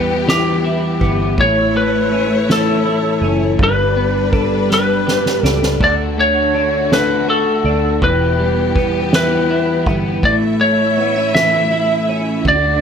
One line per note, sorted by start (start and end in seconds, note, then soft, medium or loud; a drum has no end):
0.00 0.97 E2 medium
0.00 1.38 E2 medium
0.00 1.36 E3 medium
0.00 1.46 G3 medium
0.00 1.00 B3 medium
0.00 1.36 B3 medium
0.00 1.37 G4 medium
0.00 0.25 B4 medium
0.27 2.48 E3 medium
0.27 1.43 G4 medium
0.27 snare loud
0.27 ride medium
0.64 2.85 E4 medium
0.64 ride soft
1.01 1.38 G1 medium
1.01 1.46 B3 medium
1.01 kick medium
1.01 ride medium
1.37 3.19 A1 loud
1.37 3.59 A2 medium
1.37 3.57 A3 medium
1.37 3.57 E4 medium
1.37 3.57 C#5 medium
1.37 1.74 C#5 loud
1.37 kick loud
1.37 ride medium
1.75 3.67 A3 medium
1.75 2.52 B4 loud
1.75 ride soft
2.12 3.21 C#4 medium
2.12 ride medium
2.49 3.67 E3 medium
2.49 3.63 A4 medium
2.49 snare loud
2.49 ride medium
2.85 3.67 E4 medium
2.85 ride soft
3.22 3.57 F#1 medium
3.22 3.67 C#4 medium
3.22 ride medium
3.59 5.40 G1 loud
3.59 5.81 G2 medium
3.59 5.78 G3 medium
3.59 5.79 D4 medium
3.59 5.79 B4 medium
3.59 kick loud
3.59 ride medium
3.63 4.36 B4 medium
3.97 5.88 B3 medium
3.97 ride soft
4.33 5.44 D4 medium
4.33 4.68 A4 medium
4.33 kick medium
4.33 ride medium
4.70 5.81 G3 medium
4.70 5.47 B4 medium
4.70 snare medium
5.07 5.88 G4 medium
5.07 snare medium
5.26 snare medium
5.43 5.78 C#2 medium
5.43 6.54 D4 medium
5.43 5.79 A4 medium
5.43 snare medium
5.63 snare medium
5.79 7.61 D2 medium
5.79 8.00 D3 medium
5.79 8.02 D3 medium
5.79 7.99 A3 medium
5.79 8.00 F#4 medium
5.79 kick loud
5.79 splash medium
5.84 5.93 D5 medium
6.18 6.91 A3 medium
6.18 6.95 C#5 loud
6.18 ride soft
6.54 7.64 D4 medium
6.54 ride medium
6.91 8.10 A3 medium
6.91 7.30 B4 medium
6.91 snare loud
6.91 ride medium
7.27 8.10 F#4 medium
7.27 7.99 A4 medium
7.27 ride soft
7.64 8.00 D2 medium
7.64 8.10 D4 medium
7.64 ride medium
8.01 9.86 E1 loud
8.01 10.24 E2 medium
8.01 10.21 E3 medium
8.01 10.21 B3 medium
8.01 10.21 G4 medium
8.01 9.14 B4 medium
8.01 kick loud
8.01 ride medium
8.39 10.31 G3 medium
8.39 ride soft
8.76 9.86 B3 medium
8.76 kick medium
8.76 ride medium
9.12 11.34 E3 medium
9.12 9.84 B4 medium
9.12 snare loud
9.12 ride medium
9.49 11.72 E4 medium
9.49 ride soft
9.86 10.23 G1 medium
9.86 10.31 B3 medium
9.86 kick medium
9.86 ride medium
10.23 12.08 A1 medium
10.23 12.45 A2 medium
10.23 12.43 A3 medium
10.23 12.43 E4 medium
10.23 10.35 D5 medium
10.23 12.43 E5 medium
10.23 kick medium
10.23 ride medium
10.61 12.81 A3 medium
10.61 11.34 C#5 medium
10.61 ride soft
10.97 11.16 B3 medium
10.97 ride medium
11.16 12.08 C#4 medium
11.34 12.45 E3 medium
11.34 12.04 E5 medium
11.34 snare loud
11.34 ride medium
11.71 12.53 E4 medium
11.71 ride soft
12.08 12.43 C#2 medium
12.08 12.53 C#4 medium
12.08 ride medium
12.45 12.81 D2 loud
12.45 12.81 A3 medium
12.45 12.81 D4 medium
12.45 12.81 F#4 medium
12.45 12.81 D5 loud
12.45 kick medium
12.45 ride medium